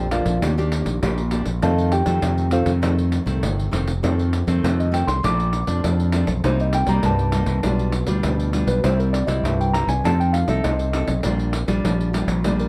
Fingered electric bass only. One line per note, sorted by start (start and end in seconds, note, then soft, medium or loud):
0.00 0.21 A#1 medium
0.26 0.39 A#1 medium
0.42 0.81 D#2 loud
0.86 0.99 A#1 medium
1.03 1.41 A#1 loud
1.46 1.60 A#1 loud
1.62 2.01 F2 medium
2.06 2.20 F2 medium
2.22 2.61 F2 medium
2.66 3.18 F2 medium
3.26 3.40 C2 medium
3.43 3.71 G1 medium
3.73 4.00 F1 medium
4.03 4.42 F2 medium
4.47 4.61 F2 medium
4.64 5.02 F2 medium
5.07 5.21 C2 loud
5.24 5.63 A#1 loud
5.68 5.81 F2 medium
5.84 6.23 F2 medium
6.28 6.41 B1 medium
6.44 6.82 C2 medium
6.87 7.01 C2 medium
7.03 7.42 C2 medium
7.47 7.61 C2 medium
7.64 8.02 B1 loud
8.08 8.21 D2 medium
8.24 8.63 D2 medium
8.67 8.81 B1 loud
8.84 9.22 C2 medium
9.28 9.41 C2 medium
9.43 9.82 C2 medium
9.88 10.01 C2 loud
10.04 10.42 F2 loud
10.48 10.61 C2 medium
10.65 11.03 C2 medium
11.08 11.21 B1 loud
11.25 11.63 A#1 medium
11.68 11.81 A#1 medium
11.84 12.22 A#1 medium
12.28 12.68 A#1 loud